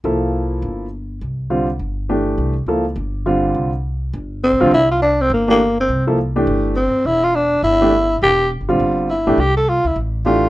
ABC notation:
X:1
M:4/4
L:1/8
Q:"Swing" 1/4=206
K:Cmix
V:1 name="Tenor saxophone"
z8 | z8 | z8 | z6 C2 |
E F D C B, B,2 C- | C z4 z C2 | E F D2 E4 | G2 z4 E2 |
G A F E z2 F2 |]
V:2 name="Grand piano"
[F,B,EA]4- [F,B,EA] z3 | z2 [D,G,CF] z3 [E,A,DG]2- | [E,A,DG] z [F,B,EA] z3 [D,G,CF]2- | [D,G,CF] z6 [B,,,D,G,CF] |
z4 z [E,A,DG] z2 | z [F,B,EA] z [E,A,DG]3 z2 | z4 z [E,A,DG] z2 | z3 [D,G,CF]3 z [E,A,DG] |
z6 [E,A,DG]2 |]
V:3 name="Upright bass" clef=bass
C,,4 G,,,4 | C,,4 G,,,4 | C,,2 _D,,2 G,,,4 | C,,4 G,,,2- (3G,,, B,,, =B,,, |
C,,4 G,,,4 | C,,4 G,,,3 z | E,,,4 G,,,4 | E,,,2- (3E,,, G,,, B,,, G,,,3 B,,, |
C,,3 _D,, A,,,4 |]